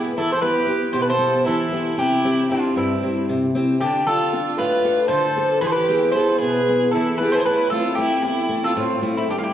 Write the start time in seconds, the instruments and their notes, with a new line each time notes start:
Already playing: steel-string acoustic guitar E3 B3 E4 G#4
0.17 steel-string acoustic guitar E3, violin E4, bouzouki A4
0.32 violin A4, bouzouki C5
0.41 steel-string acoustic guitar B3 E4 G4, violin G4, bouzouki B4
0.67 steel-string acoustic guitar B3 E4 G4
0.93 steel-string acoustic guitar B2, violin G4, bouzouki C5
0.99 violin G4, bouzouki B4
1.06 violin A4, bouzouki C5
1.19 steel-string acoustic guitar B3 E4 G4
1.45 steel-string acoustic guitar E3, violin E4, bouzouki A4
1.72 steel-string acoustic guitar B3 E4 G4
1.98 steel-string acoustic guitar C3, violin E4, bouzouki G4
2.24 steel-string acoustic guitar C4 E4 G4
2.49 steel-string acoustic guitar C4 E4 G4, violin D4, bouzouki F4
2.75 steel-string acoustic guitar G2, violin C4, bouzouki E4
3.03 steel-string acoustic guitar C4 E4 G4
3.29 steel-string acoustic guitar C3
3.55 steel-string acoustic guitar C4 E4 G4
3.80 steel-string acoustic guitar D3, violin D4, bouzouki G4
4.07 steel-string acoustic guitar D4 F4 A4, violin F4, bouzouki A4
4.33 steel-string acoustic guitar D4 F4 A4
4.57 steel-string acoustic guitar A2, violin F4, bouzouki B4
4.84 steel-string acoustic guitar D4 F4 A4
5.08 steel-string acoustic guitar D3, violin A4, bouzouki C5
5.37 steel-string acoustic guitar D4 F4 A4
5.61 steel-string acoustic guitar E3, violin G#4, bouzouki B4
5.67 violin A4, bouzouki C5
5.72 violin G4, bouzouki B4
5.89 steel-string acoustic guitar B3 E4 G#4
6.11 steel-string acoustic guitar B3 E4, violin A4, bouzouki C5
6.16 steel-string acoustic guitar G#4
6.38 steel-string acoustic guitar B2, violin G#4, bouzouki B4
6.69 steel-string acoustic guitar B3 E4 G#4
6.91 steel-string acoustic guitar E3, violin E4, bouzouki A4
7.18 steel-string acoustic guitar B3 E4 G#4, bouzouki B4
7.22 violin G4
7.32 violin A4, bouzouki B4 C5
7.37 violin G#4, bouzouki C5
7.42 steel-string acoustic guitar A2, violin A4, bouzouki B4
7.48 violin E4
7.70 steel-string acoustic guitar A3 C4 E4, violin F4, bouzouki A4
7.95 steel-string acoustic guitar A3 C4 E4, bouzouki G4
8.00 violin E4
8.22 steel-string acoustic guitar E2, violin E4, bouzouki G4
8.49 steel-string acoustic guitar A3 C4 E4
8.64 violin F4, bouzouki A4
8.76 steel-string acoustic guitar A2, violin C4, bouzouki F4
9.02 steel-string acoustic guitar A3 C4 E4
9.16 violin C4, bouzouki E4
9.28 steel-string acoustic guitar G2, violin D4, bouzouki G4
9.37 violin D4, bouzouki F4
9.42 violin E4, bouzouki G4